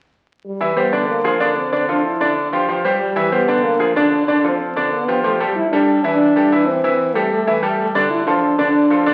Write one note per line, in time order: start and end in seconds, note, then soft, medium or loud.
0.45 0.74 G3 medium
0.61 0.74 E3 medium
0.61 0.74 E4 medium
0.61 0.74 E5 medium
0.77 0.90 G3 medium
0.77 1.06 B3 medium
0.77 0.90 G4 medium
0.77 0.90 C5 medium
0.92 1.19 D3 medium
0.92 1.19 D4 medium
0.92 1.19 D5 medium
1.09 1.53 A#3 medium
1.24 1.37 F3 medium
1.24 1.38 F4 medium
1.24 1.38 G#4 medium
1.40 1.66 D3 medium
1.40 1.66 D4 medium
1.40 1.67 D5 medium
1.58 1.91 C4 medium
1.72 1.85 D3 medium
1.72 1.85 D4 medium
1.72 1.86 D5 medium
1.89 2.15 F3 medium
1.89 2.05 D4 medium
1.89 2.15 F4 medium
1.89 2.15 A4 medium
2.05 2.34 E4 medium
2.20 2.46 D3 medium
2.20 2.47 D4 medium
2.20 2.47 D5 medium
2.53 2.65 F3 medium
2.53 2.66 F4 medium
2.53 2.66 G4 medium
2.69 2.81 F3 medium
2.69 2.81 F4 medium
2.69 2.82 G4 medium
2.84 3.10 G3 medium
2.84 3.11 G4 medium
2.84 3.11 C5 medium
3.00 3.30 G3 medium
3.16 3.29 E3 medium
3.16 3.29 E4 medium
3.16 3.29 E5 medium
3.32 3.45 G3 medium
3.32 3.65 B3 medium
3.32 3.45 G4 medium
3.32 3.45 C5 medium
3.48 3.74 D3 medium
3.48 3.74 D4 medium
3.48 3.74 D5 medium
3.64 3.96 A#3 loud
3.79 3.93 F3 medium
3.79 3.93 F4 medium
3.79 3.93 G#4 medium
3.96 4.22 D3 medium
3.96 4.26 D4 loud
3.96 4.22 D4 medium
3.96 4.23 D5 medium
4.27 4.41 D3 medium
4.27 4.47 D4 loud
4.27 4.41 D4 medium
4.27 4.41 D5 medium
4.44 4.70 F3 medium
4.44 4.70 F4 medium
4.44 4.70 A4 medium
4.50 4.54 C4 medium
4.60 4.90 C4 medium
4.76 5.02 D3 medium
4.76 5.02 D4 medium
4.76 5.03 D5 medium
4.92 5.22 B3 medium
5.08 5.21 F3 medium
5.08 5.21 F4 medium
5.08 5.21 G4 medium
5.24 5.37 F3 medium
5.24 5.39 A3 medium
5.24 5.37 F4 medium
5.24 5.37 G4 medium
5.40 5.54 G3 medium
5.40 5.53 G3 medium
5.40 5.53 G4 medium
5.40 5.53 A4 medium
5.56 5.71 E4 loud
5.72 5.98 G3 medium
5.72 6.01 D4 loud
5.72 5.98 G4 medium
5.72 5.99 A4 medium
6.03 6.30 E3 medium
6.03 6.68 D4 loud
6.03 6.30 E4 medium
6.03 6.30 E5 medium
6.36 6.49 G3 medium
6.36 6.49 G4 medium
6.36 6.49 A4 medium
6.52 6.78 E3 medium
6.52 6.78 E4 medium
6.52 6.78 E5 medium
6.66 7.16 C4 medium
6.84 7.10 E3 medium
6.84 7.10 E4 medium
6.84 7.10 E5 medium
7.15 7.41 G3 medium
7.15 7.30 A3 medium
7.15 7.41 G4 medium
7.15 7.41 A4 medium
7.31 7.60 A3 medium
7.47 7.60 E3 medium
7.47 7.60 E4 medium
7.47 7.60 E5 medium
7.63 7.89 G3 medium
7.63 7.89 G4 medium
7.63 7.89 A4 medium
7.78 7.93 A3 medium
7.94 8.21 D3 medium
7.94 8.09 G3 medium
7.94 8.21 D4 medium
7.94 8.21 D5 medium
8.10 8.25 E4 loud
8.27 8.53 F3 medium
8.27 8.56 D4 medium
8.27 8.53 F4 medium
8.27 8.53 A4 medium
8.58 8.84 D3 medium
8.58 9.14 D4 loud
8.58 8.85 D4 medium
8.58 8.85 D5 medium
8.90 9.03 F3 medium
8.90 9.04 F4 medium
8.90 9.04 A4 medium
9.06 9.14 D3 medium
9.06 9.14 D4 medium
9.06 9.14 D5 medium